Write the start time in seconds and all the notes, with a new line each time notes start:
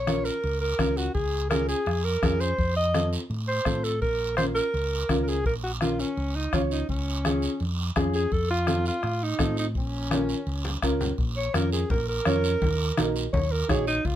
Already playing: A#1 C#5
0.07 C#4 F4 A#4, bombo rim, high conga, short guiro
0.25 A#4, short guiro
0.44 C#2, high conga, long guiro
0.61 A#4
0.78 C#2 C#4 F4 A#4, bombo low, bombo rim, high conga, short guiro
0.97 F#4, short guiro
1.15 C#2 G#4, bombo low, high conga, long guiro
1.50 C#4 F4 G#4 A#4, bombo rim, high conga, short guiro
1.69 G#4, short guiro
1.86 F2, bombo rim, high conga, long guiro
2.04 A#4
2.22 F2 C#4 F4 G#4, bombo low, bombo rim, high conga, short guiro
2.41 C5, short guiro
2.58 F2, bombo low, high conga, long guiro
2.77 D#5
2.94 C4 F4 A4, bombo rim, high conga, short guiro
3.13 short guiro
3.30 A2, high conga, long guiro
3.48 C5
3.65 A2 C4 F4 A4, bombo low, bombo rim, high conga, short guiro
3.84 A4, short guiro
4.01 A#1 A#4, bombo low, high conga, long guiro
4.37 C#4 F4 A#4 C5, bombo rim, high conga, short guiro
4.55 A#4, short guiro
4.74 C#2, high conga, long guiro
5.09 C#2 C#4 F4 A#4, bombo low, bombo rim, high conga, short guiro
5.24 A#4
5.28 G#4, short guiro
5.45 A#1 A#4, bombo low, high conga, long guiro
5.64 F#4
5.81 C#4 F4 A#4, bombo rim, high conga, short guiro
5.99 C#4, short guiro
6.17 C#2, high conga, long guiro
6.36 D#4
6.53 C#2 C#4 F4 C#5, bombo low, bombo rim, high conga, short guiro
6.71 D#4, short guiro
6.89 C#2 C#4, bombo low, high conga, long guiro
7.25 C#4 F4 G#4, bombo rim, high conga, short guiro
7.42 short guiro
7.60 F2, high conga, long guiro
7.96 F2 C#4 F4 G#4, bombo low, bombo rim, high conga, short guiro
8.14 G#4, short guiro
8.32 F2 A4, bombo low, high conga, long guiro
8.51 F4
8.67 C4 F4 A4, bombo rim, high conga, short guiro
8.86 F4, short guiro
9.03 A2, bombo rim, high conga, long guiro
9.23 D#4
9.39 A2 C4 F4 A4, bombo low, bombo rim, high conga, short guiro
9.57 D#4, short guiro
9.75 A#1 C#4, bombo low, high conga, long guiro
10.10 C#4 F4 A#4, bombo rim, high conga, short guiro
10.29 short guiro
10.47 C#2, long guiro
10.65 low conga
10.82 C#2 C#4 F4 A#4, bombo low, bombo rim, short guiro
11.01 low conga, short guiro
11.18 A#1, bombo low, high conga, long guiro
11.37 C#5
11.54 F2 C#4 F4 A#4, bombo rim, high conga, short guiro
11.72 G#4, short guiro
11.90 A#1 A#4, bombo low, high conga, low conga, long guiro
12.09 A#4
12.25 F2 C#4 F4 C#5, bombo rim, high conga, short guiro
12.44 short guiro
12.62 D#2, bombo low, high conga, low conga, long guiro
12.97 A#1 D#4 F#4 A#4, bombo rim, high conga, short guiro
13.16 short guiro
13.33 D#2 C#5, bombo low, high conga, low conga, long guiro
13.52 A#4
13.68 A#1 D#4 F#4 G#4 C#5, bombo low, bombo rim, high conga, low conga, short guiro
13.87 D#4, short guiro
14.05 C#2 F4, bombo low, high conga, long guiro